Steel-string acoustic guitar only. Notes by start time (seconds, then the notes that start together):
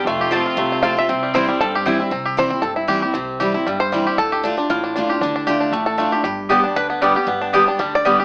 0.07 F2
0.31 F3 A3 C4 F4
0.57 C3
0.82 F3 A3 C4 F4
0.96 C4 F4
1.09 C3
1.34 E3 G3 C4 E4
1.47 C4 E4
1.61 G2
1.85 E3 G3 C4 E4
1.99 C4 E4
2.11 C3
2.37 E3 G3 C4 E4
2.51 C4 E4
2.63 G2
2.88 E3 G3 C4 E4
3.03 C4 E4
3.15 C3
3.40 E3 G3 C4 E4
3.54 C4 E4
3.67 G2
3.92 E3 G3 C4 E4
4.06 C4 E4
4.19 D3
4.43 D3 A3 D4 F4
4.57 D4 F4
4.70 A2
4.96 D3 A3 D4 F4
5.10 D4 F4
5.23 D3
5.47 D3 A3 D4 F4
5.73 A2
5.97 D3 A3 D4 F4
6.12 D4 F4
6.25 G2
6.50 D3 G3 B3 G4
6.64 B3 G4
6.76 D3
7.02 D3 G3 B3 G4
7.15 B3 G4
7.27 G2
7.53 D3 G3 B3 G4
7.66 B3 G4
7.79 D3
8.05 D3 G3 B3 G4
8.19 B3 G4